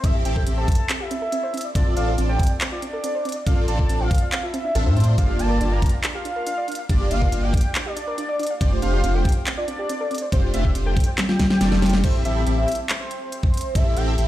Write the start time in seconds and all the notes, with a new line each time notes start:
0.04 A1 C4 E4 G4 A4 E5, kick, closed hi-hat
0.15 G4
0.25 A1 C4 E4 G4 A4 E5 G5, closed hi-hat
0.36 A4, kick
0.47 A1 C4 E4 G4 A4 E5, closed hi-hat
0.58 C5 A5
0.68 C4, kick, closed hi-hat
0.72 closed hi-hat
0.75 E5, closed hi-hat
0.90 C4, clap, closed hi-hat
1.00 G4 E5
1.11 C4, closed hi-hat
1.22 A4
1.32 C4, closed hi-hat
1.43 C5
1.54 C4, closed hi-hat
1.57 closed hi-hat
1.61 D5, closed hi-hat
1.75 A1 C4 D4 F4 A4 D5, kick, closed hi-hat
1.86 F4
1.97 A1 C4 D4 F4 A4 D5 F5, closed hi-hat
2.08 A4
2.18 A1 C4 D4 F4 A4 D5, closed hi-hat
2.29 C5 G5
2.39 C4, kick, closed hi-hat
2.43 closed hi-hat
2.47 D5, closed hi-hat
2.61 C4, clap, closed hi-hat
2.72 F4 D5
2.82 C4, closed hi-hat
2.93 A4
3.04 C4, closed hi-hat
3.15 C5
3.25 C4, closed hi-hat
3.29 closed hi-hat
3.32 D5, closed hi-hat
3.47 A1 C4 D4 F4 A4 D5 F5, kick, closed hi-hat
3.58 F4
3.68 A1 C4 D4 F4 A4 D5 A5, closed hi-hat
3.79 A4, kick
3.89 A1 C4 D4 F4 A4 D5, closed hi-hat
4.00 C5 F5
4.11 C4, kick, closed hi-hat
4.15 closed hi-hat
4.18 D5, closed hi-hat
4.32 C4, clap, closed hi-hat
4.43 F4 E5
4.54 C4, closed hi-hat
4.65 D4
4.75 A1 C4 D4 F4 A4 E5, closed hi-hat
4.86 A2 C4 D4 F4 A4 C5
4.97 C4, closed hi-hat
5.00 closed hi-hat
5.04 D5, closed hi-hat
5.18 G1 A#3 D4 F4 G4 D5 F5, kick, closed hi-hat
5.29 G4
5.39 G1 A#3 D4 F4 G4 D5 A5, closed hi-hat
5.50 A#4
5.61 G1 A#3 D4 F4 G4 D5, closed hi-hat
5.72 D5 A#5
5.82 D4, kick, closed hi-hat
5.86 closed hi-hat
5.89 F5, closed hi-hat
6.04 D4, clap, closed hi-hat
6.15 G4 F5
6.25 D4, closed hi-hat
6.36 A#4
6.47 D4, closed hi-hat
6.58 D5
6.68 D4, closed hi-hat
6.72 closed hi-hat
6.75 F5, closed hi-hat
6.89 G1 A#3 D4 F4 G4 D5, kick, closed hi-hat
7.00 G4
7.11 G1 A#3 D4 F4 G4 D5 F5, closed hi-hat
7.22 A#4, kick
7.32 G1 A#3 D4 F4 G4 D5, closed hi-hat
7.43 D5 G5
7.54 D4, kick, closed hi-hat
7.57 closed hi-hat
7.61 F5, closed hi-hat
7.75 D4, clap, closed hi-hat
7.86 G4 D5
7.97 D4, closed hi-hat
8.07 A#4
8.18 D4, closed hi-hat
8.29 D5
8.39 D4, closed hi-hat
8.43 closed hi-hat
8.47 F5, closed hi-hat
8.61 F1 A3 C4 D4 F4 G4 C5 D5, kick, closed hi-hat
8.72 F4
8.82 F1 A3 C4 D4 F4 G4 C5 F5, closed hi-hat
8.93 G4
9.04 F1 A3 C4 D4 F4 G4 C5, closed hi-hat
9.15 A4 G5
9.25 C4, kick, closed hi-hat
9.29 closed hi-hat
9.32 C5, closed hi-hat
9.47 C4, clap, closed hi-hat
9.57 F4 D5
9.68 C4, closed hi-hat
9.79 G4
9.89 C4, closed hi-hat
10.00 A4
10.11 C4, closed hi-hat
10.15 closed hi-hat
10.18 C5, closed hi-hat
10.32 F1 A3 C4 D4 F4 G4 C5, kick, closed hi-hat
10.43 F4
10.54 F1 A3 C4 D4 F4 G4 C5 E5, closed hi-hat
10.65 G4, kick
10.75 F1 A3 C4 D4 F4 G4 C5, closed hi-hat
10.86 A4 G5
10.97 C4, kick, closed hi-hat
11.00 closed hi-hat
11.04 C5, closed hi-hat
11.18 C4, snare, clap, closed hi-hat
11.29 F4 G5, snare
11.39 F4, kick, snare, closed hi-hat
11.50 C5, snare
11.61 F1 A3 C4 D4 F4 G4 D5, snare, closed hi-hat
11.72 F1 A3 D4 F4 G4 A4 D5, snare
11.82 C4, snare, closed hi-hat
11.86 closed hi-hat
11.89 C4, snare, closed hi-hat
12.04 A1 C4 E4 G4 A4 C5 E5, kick, closed hi-hat, crash
12.25 A1 C4 E4 G4 A4 E5, closed hi-hat
12.47 A1 C4 E4 G4 A4 E5, closed hi-hat
12.58 E5
12.68 closed hi-hat
12.72 closed hi-hat
12.75 closed hi-hat
12.89 clap, closed hi-hat
13.00 C5
13.11 closed hi-hat
13.32 closed hi-hat
13.43 kick
13.54 closed hi-hat
13.57 closed hi-hat
13.61 closed hi-hat
13.75 A1 C4 E4 G4 A4 E5, kick, closed hi-hat
13.97 A1 C4 E4 G4 A4 E5 G5, closed hi-hat
14.18 A1 C4 E4 G4 A4 E5, closed hi-hat